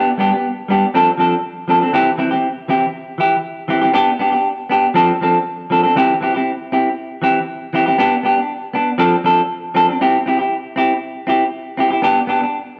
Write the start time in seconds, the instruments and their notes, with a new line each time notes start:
0.18 clean electric guitar G3 B3 D4 G4
0.32 clean electric guitar B3 G4
0.68 clean electric guitar G3 B3 D4 G4
0.94 clean electric guitar F3 C4 D4 A4
1.18 clean electric guitar F3 C4 D4 A4
1.68 clean electric guitar F3 C4 D4 A4
1.81 clean electric guitar C4 D4 A4
1.93 clean electric guitar E3 C4 E4 G4
2.18 clean electric guitar E3 C4 E4, muted clean electric guitar stroke
2.31 clean electric guitar C4 E4 G4
2.68 clean electric guitar E3 C4 E4 G4
3.18 clean electric guitar E3 E4 G4
3.68 clean electric guitar E3 C4 E4 G4
3.81 clean electric guitar C4 E4 G4
3.94 clean electric guitar B3 D4 G4
4.19 clean electric guitar B3 D4 G4
4.32 clean electric guitar D4 G4
4.70 clean electric guitar B3 D4 G4
4.94 clean electric guitar F3 C4 D4 A4
5.21 clean electric guitar F3 C4 D4 A4
5.70 clean electric guitar F3 C4 D4 A4
5.83 clean electric guitar C4 D4 A4
5.96 clean electric guitar E3 C4 E4 G4
6.21 clean electric guitar E3 C4 E4 G4
6.34 clean electric guitar C4 E4 G4
6.72 clean electric guitar C4 E4 G4
7.22 clean electric guitar E3 C4 E4 G4
7.73 clean electric guitar E3 C4 E4 G4
7.86 clean electric guitar C4 E4 G4
7.98 clean electric guitar B3 D4 G4
8.23 clean electric guitar B3 D4 G4
8.38 clean electric guitar D4
8.74 clean electric guitar B3 D4, muted clean electric guitar stroke
8.98 clean electric guitar F3 C4 D4 A4
9.24 clean electric guitar F3 C4 D4 A4
9.74 clean electric guitar F3 C4 D4 A4
9.89 clean electric guitar C4 D4, muted clean electric guitar stroke
10.01 clean electric guitar C4 E4 G4
10.26 clean electric guitar C4 E4 G4
10.39 clean electric guitar E4 G4
10.76 clean electric guitar C4 E4 G4
11.27 clean electric guitar C4 E4 G4
11.77 clean electric guitar C4 E4 G4
11.91 clean electric guitar E4 G4
12.02 clean electric guitar B3 D4 G4
12.27 clean electric guitar B3 D4 G4
12.41 clean electric guitar D4, muted clean electric guitar stroke